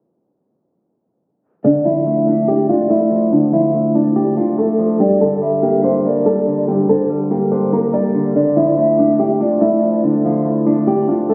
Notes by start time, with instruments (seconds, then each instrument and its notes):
1.64 clean electric guitar D3, nylon-string guitar D4, pan flute D5
1.85 clean electric guitar F3, nylon-string guitar E4
2.06 clean electric guitar A3, pan flute E5
2.27 nylon-string guitar D4, clean electric guitar D4
2.48 nylon-string guitar G4, clean electric guitar D5
2.69 clean electric guitar D4, nylon-string guitar F4, pan flute D5
2.90 clean electric guitar A3, nylon-string guitar E4
3.11 clean electric guitar F3
3.32 clean electric guitar D3, nylon-string guitar D4
3.53 clean electric guitar F3, nylon-string guitar E4, pan flute F5
3.74 clean electric guitar A3
3.95 clean electric guitar D4, nylon-string guitar D4
4.16 nylon-string guitar G4, clean electric guitar D5
4.37 clean electric guitar D4, nylon-string guitar F4
4.58 clean electric guitar A3, nylon-string guitar A4
4.79 clean electric guitar F3
5.00 clean electric guitar G2, nylon-string guitar G4, pan flute D5
5.21 clean electric guitar D3, nylon-string guitar A4
5.42 clean electric guitar G3, pan flute E5
5.63 clean electric guitar A#3, nylon-string guitar G4
5.84 clean electric guitar D4, nylon-string guitar C5
6.05 clean electric guitar A#3, nylon-string guitar A#4, pan flute D5
6.26 clean electric guitar G3, nylon-string guitar A4
6.47 clean electric guitar D3
6.68 clean electric guitar G2, nylon-string guitar G4
6.89 clean electric guitar D3, nylon-string guitar A4, pan flute C5
7.10 clean electric guitar G3
7.31 clean electric guitar A#3, nylon-string guitar G4
7.51 clean electric guitar D4, nylon-string guitar C5
7.73 clean electric guitar A#3, nylon-string guitar A#4
7.93 clean electric guitar G3, nylon-string guitar D5
8.14 clean electric guitar D3
8.35 clean electric guitar D3, nylon-string guitar D4, pan flute D5
8.56 clean electric guitar F3, nylon-string guitar E4
8.78 clean electric guitar A3, pan flute E5
8.99 nylon-string guitar D4, clean electric guitar D4
9.19 nylon-string guitar G4, clean electric guitar D5
9.40 clean electric guitar D4, nylon-string guitar F4, pan flute D5
9.61 clean electric guitar A3, nylon-string guitar E4
9.83 clean electric guitar F3
10.03 clean electric guitar D3, nylon-string guitar D4
10.24 clean electric guitar F3, nylon-string guitar E4, pan flute F5
10.45 clean electric guitar A3
10.66 nylon-string guitar D4, clean electric guitar D4
10.87 nylon-string guitar G4, clean electric guitar D5
11.08 clean electric guitar D4, nylon-string guitar F4
11.29 clean electric guitar A3, nylon-string guitar A4